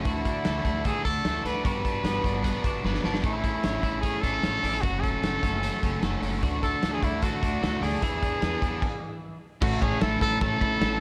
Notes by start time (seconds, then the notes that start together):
Already playing: A3
0.05 D2 D3 E3 A3 D4 E4 F#4, kick, closed hi-hat
0.25 A3 D4 F#4, kick, closed hi-hat
0.45 D2 E3 A3 D4 F#4, snare, closed hi-hat
0.65 D2 A3 D4 F#4, kick, closed hi-hat
0.84 D3 E3 A3 D4 F#4 G#4, kick, closed hi-hat
1.05 D2 A3 D4 F#4 A4, kick, closed hi-hat
1.24 D2 E3 A3 D4, snare, closed hi-hat
1.29 F#4
1.44 D2 A3 D4 F#4 B4, closed hi-hat
1.64 G1 G3 B3 D4 F#4 B4, kick, closed hi-hat
1.83 B3 D4 F#4, kick, closed hi-hat
2.04 G1 G3 B3 D4 F#4, snare, closed hi-hat
2.24 G1 B3 D4 F#4, kick, closed hi-hat
2.43 G3 B3 D4 F#4, kick, closed hi-hat
2.64 G1 B3 D4 F#4, kick, closed hi-hat
2.84 G1 G3 B3 D4 F#4, snare
2.94 snare
3.04 G1 B3 D4 F#4, snare
3.14 snare
3.23 A1 A3 C#4 E4 G#4, kick, closed hi-hat
3.44 C#4 E4 G#4, kick, closed hi-hat
3.63 A1 A3 C#4 E4 G#4, snare, closed hi-hat
3.83 A1 C#4 E4 G#4, kick, closed hi-hat
4.01 A3 C#4 E4 G#4, kick, closed hi-hat
4.21 A1 D4 E4 G#4 A4, kick, closed hi-hat
4.26 C#4
4.34 E4
4.43 A1 A3 C#4 E4 G#4, snare, closed hi-hat
4.63 A1 C#4 D4 E4 G#4, open hi-hat
4.73 E4
4.81 F#1 F#2 C#3 F#3 A3 C#4 F#4, kick, closed hi-hat
5.01 A3 C#4 F#4 A4, kick, closed hi-hat
5.06 F#3
5.23 F#1 F#3 A3 C#4 F#4, snare, closed hi-hat
5.43 F#1 F#3 A3 C#4 F#4, kick, closed hi-hat
5.63 F#2 C#3 F#3 A3 C#4 F#4, closed hi-hat
5.82 F#1 F#3 A3 C#4 F#4, kick, closed hi-hat
6.02 F#1 F#3 A3 C#4 F#4, snare, closed hi-hat
6.21 F#1 F#3 A3 C#4 F#4, open hi-hat
6.42 D2 D3 E3 A3 D4 F#4, kick, closed hi-hat
6.61 A3 D4 F#4 A4, kick, closed hi-hat
6.82 D2 E3 A3 D4 F#4, snare, closed hi-hat
6.93 G#4
7.02 D2 A3 D4 E4 F#4, kick, closed hi-hat
7.22 D3 E3 A3 D4 F#4, kick, closed hi-hat
7.41 D2 A3 D4 F#4, kick, closed hi-hat
7.61 D2 E3 A3 D4 F#4, snare, closed hi-hat
7.81 D2 A3 D4 F#4 G#4, open hi-hat
8.01 E2 E3 B3 D4 G#4, kick, closed hi-hat
8.22 B3 D4 G#4, kick, closed hi-hat
8.42 E2 E3 B3 D4 G#4, snare, closed hi-hat
8.62 E2 B3 D4 G#4, kick, closed hi-hat
8.82 kick, crash
9.61 A1 A2 E3 A3 C#4 E4 F#4 A4, kick, crash
9.82 A1 A3 C#4 E4 G#4 A4, kick, ride
10.01 A1 A3 C#4 E4 A4, snare, ride
10.21 A1 A3 C#4 E4 A4, kick, ride
10.41 A1 A2 E3 A3 C#4 E4 A4, kick, ride
10.61 A1 A3 C#4 E4 A4, kick, ride
10.80 A1 A3 C#4 E4 A4, snare, ride